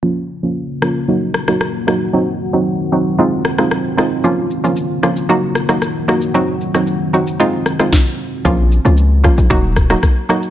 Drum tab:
SH |----------------|----------------|x-xxx-xxx-xxx-xx|x-xxx-xxx-xx----|
SD |------r---rrr-r-|----------rrr-r-|------r---rrr-r-|---r------rro---|
BD |----------------|----------------|----------------|------------o---|

SH |x-xxx-xxx-xxx-xx|
SD |------r---rrr-r-|
BD |o-----o-o-o-o---|